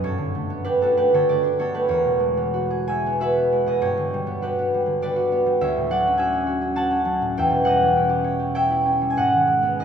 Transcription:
Already playing: B3 B4
0.04 G2 A4 C#5
0.18 D3
0.35 A3
0.50 B3
0.64 D4 G4 B4
0.81 B3 F#4 A4
0.97 A3 G4 B4
1.13 D3 A4 C#5
1.29 A3 B4 D5
1.43 D4
1.59 B3 A4 C#5
1.74 A3 G4 B4
1.88 E2 A#4 C#5
2.04 B2
2.20 G#3
2.37 B3
2.54 F#4
2.71 G#4
2.88 F#4 E5 G#5
3.06 B3
3.20 F#4 B4 E5
3.37 B3
3.52 G#3
3.66 B2 B4 D#5
3.82 G2 G4 C#5
3.98 D3
4.14 G3
4.27 B3
4.42 F#4 G4 B4
4.59 B3
4.74 G3
4.86 D3
5.02 G3 B4 D5
5.16 F#4
5.32 B3
5.46 G3
5.61 D2 C#5 E5
5.77 A2
5.90 F#3 D5 F#5
6.06 C#4
6.18 F#4 E5 G#5
6.33 C#4
6.47 F#4
6.61 C#4
6.76 F#4 F#5 A5
6.91 C#4
7.05 F#3
7.22 A2
7.38 E2 E5 G5
7.51 B2
7.65 G3 D#5 F#5
7.82 C#4
7.96 E4
8.09 G4
8.24 C#5
8.39 G4
8.55 C#5 E5 G5
8.70 E4
8.85 C#4
9.01 G3
9.10 G#5
9.17 G#2 D#5 F#5
9.34 D#3
9.47 G#3
9.63 B3
9.80 D#4 B4 D#5

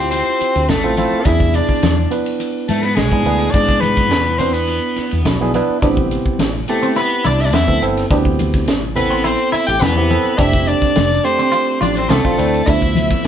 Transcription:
Already playing: D2 C4 E4 F4 G4 C5
0.11 C4 C5, hi-hat pedal, ride, muted conga
0.40 muted fingered electric bass stroke, hi-hat pedal, ride, muted conga
0.55 D2, ride
0.69 A1 A3 A4, snare, hi-hat pedal, ride, high conga, low conga
0.84 C4 E4 F4 A4
0.97 C4 E4 F4 A4, hi-hat pedal, ride, high conga
1.13 muted fingered electric bass stroke
1.25 E2 B3 D4 E4 G#4 E5, kick, hi-hat pedal, ride, muted conga
1.40 kick
1.54 D4 D5, hi-hat pedal, ride
1.69 muted fingered electric bass stroke, kick
1.83 E2, snare, hi-hat pedal, ride, muted conga, high conga
2.11 B3 D4 E4 B4, hi-hat pedal, ride
2.26 ride
2.40 hi-hat pedal, ride, muted conga
2.68 G#2 A3 A4, hi-hat pedal, ride, muted conga, high conga
2.83 B3 B4, ride
2.96 B1 G#3 G#4, snare, hi-hat pedal, ride, high conga
3.12 G#2 B3 D4 E4 G#4, kick
3.25 D2 B3 D4 E4 G#4, hi-hat pedal, ride
3.40 ride
3.51 G#2 B3 D4 E4 G#4 D5, kick, hi-hat pedal, ride, muted conga
3.69 kick
3.81 B3 B4, hi-hat pedal, ride, high conga
3.97 kick, ride
4.11 E2, snare, hi-hat pedal, ride, muted conga
4.38 B3 C4 D4 E4 B4 C5, hi-hat pedal, ride, low conga
4.53 B3 B4, ride
4.67 hi-hat pedal, ride, muted conga
4.96 muted fingered electric bass stroke, snare, hi-hat pedal, ride, muted conga
5.11 E2, ride
5.25 B1 B5, snare, hi-hat pedal, ride, high conga, low conga
5.41 B3 D4 E4 G#4
5.53 B3 D4 E4 B4 E5, hi-hat pedal, ride, high conga
5.70 muted fingered electric bass stroke
5.82 A1 B3 C4 D4 E4 G4, kick, hi-hat pedal, ride, muted conga
5.97 kick
6.11 hi-hat pedal, ride
6.26 muted fingered electric bass stroke, kick
6.39 A1, snare, hi-hat pedal, ride, muted conga, high conga
6.68 A3 B3 C4 E4 G4 A4, hi-hat pedal, ride
6.83 C4, ride
6.96 B3 E4 B4, hi-hat pedal, ride, muted conga
7.25 C2 D4 E4 D5, snare, hi-hat pedal, ride, muted conga, high conga
7.40 E4 E5, snare, ride
7.46 D4 D5
7.53 E2 B3 E4 E5, snare, hi-hat pedal, ride, high conga
7.67 D2 B3 C4 E4 A4, kick
7.82 G1 B3 C4 E4 A4, hi-hat pedal, ride
7.97 snare, ride
8.10 D2 B3 C4 D4 E4 G4, kick, hi-hat pedal, ride, muted conga
8.25 kick
8.39 hi-hat pedal, ride, high conga
8.54 kick, snare, ride
8.68 A1, snare, hi-hat pedal, ride, muted conga
8.96 B3 C4 E4 A4 B4, hi-hat pedal, ride, low conga
9.11 C4, ride
9.24 C4 E4 C5, hi-hat pedal, ride, muted conga
9.52 E4 E5, muted fingered electric bass stroke, hi-hat pedal, ride, muted conga
9.67 A1 G4 G5, ride
9.81 E2 B3 B4, snare, hi-hat pedal, ride, high conga, low conga
9.96 B3 C4 E4 G4
10.10 B3 C4 E4 A4, hi-hat pedal, ride, high conga
10.26 muted fingered electric bass stroke
10.38 F1 A3 C4 D4 E4 G4 E5, kick, hi-hat pedal, ride, muted conga
10.53 kick
10.68 D4 D5, hi-hat pedal, ride
10.82 muted fingered electric bass stroke, kick, snare
10.96 F1, snare, hi-hat pedal, ride, muted conga, high conga
11.11 snare
11.24 A3 C4 D4 G4 C5, hi-hat pedal, ride
11.39 C4, ride
11.52 F4, hi-hat pedal, ride, muted conga
11.81 A1 D4 F4 D5, snare, hi-hat pedal, ride, muted conga, high conga
11.96 C4 C5, snare, ride
12.09 C2 A3 C4 A4, snare, hi-hat pedal, ride, high conga
12.24 A1 A3 C4 D4 F4, kick
12.38 D2 A3 C4 D4 E4, hi-hat pedal, ride
12.54 ride
12.66 D2 F3 A3 B3 D4 E4 E5, kick, hi-hat pedal, ride, muted conga
12.82 kick
12.95 hi-hat pedal, ride, high conga
13.11 kick, snare, ride

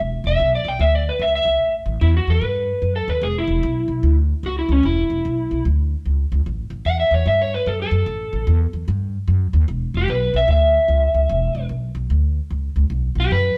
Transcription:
0.00 E1
0.24 E1 E5
0.40 B1
0.55 D5
0.65 B1 G5
0.79 D2 E5
0.95 D5
1.09 B4
1.19 C#2 E5
1.35 E5
1.45 C#2
1.60 A1
1.86 A1
2.01 E2 E4
2.17 F#4
2.27 E2 A4
2.41 G2 B4
2.82 F#2
2.96 A4
3.08 D#2 B4
3.21 E1 G#4
3.38 E4
3.48 E1
3.63 B1
3.88 B1
4.03 D2
4.43 C#2 F#4
4.59 E4
4.69 C#2 C#4
4.83 E1 E4
5.10 E1
5.25 B1
5.51 B1
5.65 D2
6.05 C#2
6.32 C#2
6.46 A1
6.70 A1
6.85 E2 F#5
7.00 E5
7.11 E2 C#5
7.26 G2 E5
7.42 C#5
7.54 B4
7.66 F#2 A4
7.82 A4
7.91 F#2
8.06 A1
8.33 A1
8.47 E2
8.73 E2
8.88 G2
9.28 F#2
9.53 D#2
9.68 E1
9.94 E1 G4
10.08 B1 B4
10.34 B1 E5
10.48 D2 E5
10.88 C#2
11.14 C#2
11.29 E1
11.55 E1
11.69 B1
11.95 B1
12.10 D2
12.51 C#2
12.76 C#2
12.90 B1
13.15 B1
13.20 G4
13.31 F#2 B4

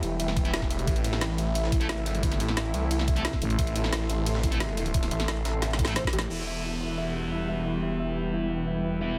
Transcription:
Already playing: E3 G3 A3 E4 G4 B4 E5 G5
0.03 E1 E4, closed hi-hat, ride
0.20 E1 E5, closed hi-hat, ride
0.28 snare
0.37 E4, kick, closed hi-hat, ride
0.45 E3 B3 E4, closed hi-hat
0.54 E4, snare, closed hi-hat, ride
0.62 kick, snare
0.70 E5, closed hi-hat, ride
0.79 closed hi-hat
0.87 A1 C3 E4 A4, kick, closed hi-hat, ride
0.96 closed hi-hat
1.04 A1 E5, closed hi-hat, ride
1.13 snare
1.21 E4, snare, closed hi-hat, ride
1.30 snare
1.38 E4, closed hi-hat, ride
1.55 E5, closed hi-hat, ride
1.64 snare
1.72 E4, kick, closed hi-hat, ride
1.80 A3 E4 A4, closed hi-hat
1.89 E4 C6, snare, closed hi-hat, ride
1.98 G#1, ride
2.06 E5, snare, closed hi-hat, ride
2.15 closed hi-hat
2.23 G1 E4, kick, closed hi-hat, ride
2.32 snare, closed hi-hat, ride
2.40 A1 E4, closed hi-hat, ride
2.48 snare
2.57 E5, snare, closed hi-hat, ride
2.65 ride
2.74 C2 E4, closed hi-hat, ride
2.91 E4, closed hi-hat, ride
2.99 snare
3.08 E5, kick, closed hi-hat, ride
3.16 A3 E4 A4, closed hi-hat
3.25 E4, snare, closed hi-hat, ride
3.33 kick, snare
3.42 A1 E4, closed hi-hat, ride
3.50 closed hi-hat
3.59 A1 E5, kick, closed hi-hat, ride
3.67 closed hi-hat
3.76 A1 E4, closed hi-hat, ride
3.84 snare
3.93 E4, snare, closed hi-hat, ride
4.01 snare
4.10 E5, closed hi-hat, ride
4.26 E4, closed hi-hat, ride
4.35 snare
4.43 E4, kick, closed hi-hat, ride
4.52 A3 E4 A4, closed hi-hat
4.60 E5, snare, closed hi-hat, ride
4.69 ride
4.77 E4, closed hi-hat, ride
4.86 closed hi-hat
4.94 E4, kick, closed hi-hat, ride
5.03 snare, closed hi-hat, ride
5.11 A1 E5, closed hi-hat
5.20 snare, closed hi-hat, ride
5.28 E4, snare, closed hi-hat, ride
5.37 ride
5.45 A1 E4, snare, closed hi-hat, ride
5.62 E5, snare, closed hi-hat, ride
5.71 snare, ride
5.79 E4, kick, snare, closed hi-hat, ride
5.85 A4, snare
5.88 A3 E4, snare, closed hi-hat, ride
5.96 C5, snare, closed hi-hat, ride
6.04 kick, snare
6.13 A1 G4, closed hi-hat
6.19 snare, closed hi-hat
6.30 E1 E3 G3 B3 E4 G4, downlifter
6.35 B4
6.44 E5
6.48 G5
6.64 E4
6.81 E4
6.98 E5
7.15 E4
7.32 E4
7.49 E5
7.65 E4
7.82 E4
7.99 E5
8.16 E4
8.33 E4
8.50 E5
8.67 E4
8.84 E4
9.01 E3 B3 E4 A4 E5

